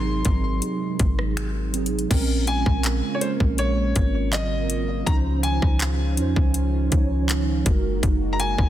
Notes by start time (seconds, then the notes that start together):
Already playing: G#1 C3 F#3 G#3 C4 D#4 G#4 A#4 C6
0.25 G#1, kick, closed hi-hat
0.62 closed hi-hat
0.99 G#1, kick, closed hi-hat
1.19 cross-stick
1.37 finger snap, closed hi-hat
1.72 F#3 C4 D#4, closed hi-hat
1.77 G#4
1.86 closed hi-hat
1.99 closed hi-hat
2.09 A#1 C#3 G#3 A#3 C4 C#4 F4, kick, closed hi-hat, crash
2.14 A#4
2.47 G#5, closed hi-hat
2.66 A#1, kick, cross-stick
2.84 clap, closed hi-hat
3.15 C#5
3.20 G#3 A#3 C#4 C5, closed hi-hat
3.25 A#4
3.40 A#1, kick
3.58 C#5, closed hi-hat
3.96 G#1, kick, closed hi-hat
4.31 F#3 A#3 C4 F4 D#5, clap, closed hi-hat
4.36 A#4
4.70 closed hi-hat
5.05 C#2 D#3 F3 C#4 D#4 A#5, kick, closed hi-hat
5.10 A#4
5.17 C5
5.43 G#5, closed hi-hat
5.62 C#2, kick, cross-stick
5.80 clap, closed hi-hat
6.16 F2 F3 C#4 D#4, closed hi-hat
6.21 C5
6.36 C#2, kick
6.54 closed hi-hat
6.90 C#2 F3 C#4 D#4, kick, closed hi-hat
6.95 C#5
7.29 clap, closed hi-hat
7.64 F#1 G#3 A#3 D#4 F#4, kick, closed hi-hat
7.69 A#4
8.03 F#1, kick, closed hi-hat
8.33 A#5
8.40 G#5, closed hi-hat
8.58 F#1, kick, cross-stick